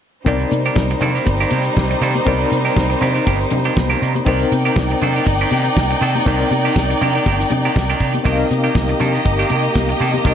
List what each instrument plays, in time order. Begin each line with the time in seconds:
0.25 fingered electric bass C2, clean electric guitar D#3 A#3 D4 G4, violin section G3 D#4 C5, tine electric piano C4 D#4 A#4 D5, kick, closed hi-hat, muted conga
0.40 closed hi-hat
0.51 fingered electric bass C3, muted clean electric guitar stroke, closed hi-hat, muted conga
0.66 clean electric guitar D#3 A#3 D4 G4, closed hi-hat
0.76 fingered electric bass C2, muted clean electric guitar stroke, kick, snare, high conga
0.91 muted clean electric guitar stroke, closed hi-hat
1.01 fingered electric bass C3, clean electric guitar D#3 A#3 D4 A4, closed hi-hat, low conga
1.15 clean electric guitar D#3 A#3 D4 G4, closed hi-hat
1.26 fingered electric bass G1, muted clean electric guitar stroke, kick, closed hi-hat, muted conga
1.40 clean electric guitar D#3 A#3 D4 G4, closed hi-hat
1.51 fingered electric bass C3, clean electric guitar D#3 A#3 D4 G4, closed hi-hat, muted conga
1.64 muted clean electric guitar stroke, closed hi-hat
1.76 fingered electric bass C2, kick, snare, high conga
1.91 muted clean electric guitar stroke, closed hi-hat
2.01 fingered electric bass C3, clean electric guitar D#3 A#3 D4 A4, closed hi-hat
2.15 muted clean electric guitar stroke, closed hi-hat, high conga
2.25 fingered electric bass C2, clean electric guitar D#3 A#3 D4 G4, tine electric piano C4 D#4 A#4 D5, kick, closed hi-hat, muted conga
2.40 closed hi-hat
2.52 fingered electric bass C3, closed hi-hat, muted conga
2.65 clean electric guitar D#3 A#3 D4 G4, closed hi-hat
2.76 fingered electric bass C2, kick, snare, high conga
2.90 muted clean electric guitar stroke, closed hi-hat
3.01 fingered electric bass C3, clean electric guitar D#3 A#3 D4 G4, closed hi-hat, low conga
3.15 clean electric guitar D#3 A#3 D4 G4, closed hi-hat
3.25 fingered electric bass G1, clean electric guitar D#3 A#3 D4 G4, kick, closed hi-hat, muted conga
3.40 muted clean electric guitar stroke, closed hi-hat
3.50 fingered electric bass C3, muted clean electric guitar stroke, closed hi-hat, muted conga, low conga
3.64 clean electric guitar D#3 A#3 D4 G4, closed hi-hat
3.76 fingered electric bass C2, muted clean electric guitar stroke, kick, snare, high conga
3.90 clean electric guitar D#3 A#3 D4 G4, closed hi-hat
4.01 fingered electric bass C3, clean electric guitar D#3 A#3 D4 G4, closed hi-hat
4.15 muted clean electric guitar stroke, closed hi-hat, high conga
4.25 fingered electric bass C2, clean electric guitar D#3 A#3 D4 G4, tine electric piano C4 D#4 A#4 C5, violin section D#4 D5 G5, kick, closed hi-hat, muted conga
4.40 closed hi-hat
4.52 fingered electric bass C3, muted clean electric guitar stroke, closed hi-hat, muted conga
4.65 clean electric guitar D#3 A#3 D4 G4, closed hi-hat
4.76 fingered electric bass C2, muted clean electric guitar stroke, kick, snare, high conga
4.90 muted clean electric guitar stroke, closed hi-hat
5.02 fingered electric bass C3, clean electric guitar D#3 A#3 D4 A4, closed hi-hat, low conga
5.15 clean electric guitar D#3 A#3 D4 G4, closed hi-hat
5.26 fingered electric bass G1, kick, closed hi-hat, muted conga
5.41 clean electric guitar D#3 A#3 D4 G4, closed hi-hat
5.50 fingered electric bass C3, clean electric guitar D#3 A#3 D4 G4, closed hi-hat, muted conga
5.64 muted clean electric guitar stroke, closed hi-hat
5.77 fingered electric bass C2, kick, snare, high conga
5.91 muted clean electric guitar stroke, closed hi-hat
6.01 fingered electric bass C3, clean electric guitar D#3 A#3 D4 A4, closed hi-hat
6.15 muted clean electric guitar stroke, closed hi-hat, high conga
6.25 fingered electric bass C2, clean electric guitar D#3 A#3 D4 G4, tine electric piano C4 D#4 A#4 D5, kick, closed hi-hat
6.40 closed hi-hat
6.51 fingered electric bass C3, muted clean electric guitar stroke, closed hi-hat, muted conga
6.65 clean electric guitar D#3 A#3 D4 G4, closed hi-hat
6.76 fingered electric bass C2, muted clean electric guitar stroke, kick, snare, high conga
6.90 muted clean electric guitar stroke, closed hi-hat
7.01 fingered electric bass C3, clean electric guitar D#3 A#3 D4 G4, closed hi-hat, low conga
7.15 clean electric guitar D#3 A#3 D4 G4, closed hi-hat
7.26 fingered electric bass G1, clean electric guitar D#3 A#3 D4 G4, kick, closed hi-hat, muted conga
7.40 muted clean electric guitar stroke, snare, closed hi-hat
7.50 fingered electric bass C3, muted clean electric guitar stroke, closed hi-hat, muted conga, low conga
7.64 clean electric guitar D#3 A#3 D4 G4, closed hi-hat
7.76 fingered electric bass C2, muted clean electric guitar stroke, kick, snare, high conga
7.90 clean electric guitar D#3 A#3 D4 G4, closed hi-hat
8.00 fingered electric bass C3, clean electric guitar D#3 A#3 D4 G4, kick, open hi-hat
8.14 muted clean electric guitar stroke, closed hi-hat, high conga
8.23 fingered electric bass C2, clean electric guitar D#3 A#3 D4 G4, violin section A#3 G4 D#5, tine electric piano C4 D#4 A#4 D#5, kick, closed hi-hat, muted conga
8.32 tine electric piano F5
8.39 closed hi-hat
8.51 fingered electric bass C3, closed hi-hat, muted conga
8.64 clean electric guitar D#3 A#3 D4 G4, closed hi-hat
8.75 fingered electric bass C2, muted clean electric guitar stroke, kick, snare, high conga
8.89 muted clean electric guitar stroke, closed hi-hat
9.00 fingered electric bass C3, clean electric guitar D#3 A#3 D4 A4, closed hi-hat, low conga
9.14 clean electric guitar D#3 A#3 D4 G4, closed hi-hat
9.25 fingered electric bass G1, muted clean electric guitar stroke, kick, closed hi-hat, muted conga
9.39 clean electric guitar D#3 A#3 D4 G4, closed hi-hat
9.50 fingered electric bass C3, clean electric guitar D#3 A#3 D4 G4, closed hi-hat, muted conga
9.63 muted clean electric guitar stroke, closed hi-hat
9.76 fingered electric bass C2, kick, snare, high conga
9.89 muted clean electric guitar stroke, closed hi-hat
10.00 fingered electric bass C3, clean electric guitar D#3 A#3 D4 A4, open hi-hat
10.14 muted clean electric guitar stroke, closed hi-hat, high conga
10.24 fingered electric bass C2, clean electric guitar D#3 A#3 D4 G4, tine electric piano C4 D#4 A#4 D#5, kick, closed hi-hat, muted conga